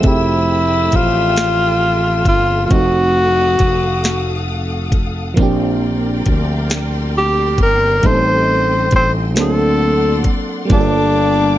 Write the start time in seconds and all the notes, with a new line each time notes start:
Already playing: G#4 C5 E6
0.00 F3 A3 C4 A4 E5 G5, kick, closed hi-hat
0.04 F1 E4 G4 E5
0.92 A1 F4, kick, closed hi-hat
1.36 snare, closed hi-hat
2.25 G1 F4, kick, closed hi-hat
2.66 F3 A3 F4 F5 F#5 D#6
2.70 F1 C4 D#4 F#4, kick, closed hi-hat
2.75 F#4
3.59 F1, kick, closed hi-hat
4.04 snare, closed hi-hat
4.92 kick, closed hi-hat
5.34 A#1 F3 A#3 A#4 D5 G5 C6, kick, closed hi-hat
5.39 C4 D4 G4
6.26 D2, kick, closed hi-hat
6.70 snare, closed hi-hat
7.18 G4
7.58 G1, kick, closed hi-hat
7.63 A#4
8.02 A1 G3 A3 A#3 D#4 A4 D#5, kick, closed hi-hat
8.06 A4 C5
8.11 C4
8.91 A1, kick, closed hi-hat
8.96 C5
9.35 D2 F#3 A#3 C4 D4 D5 F#5 C6, snare, closed hi-hat
9.39 A4
10.24 kick, closed hi-hat
10.65 G3 A#3 D4 F5 G5 D6
10.70 G1 D4 F4 G#4, kick, closed hi-hat
10.80 A4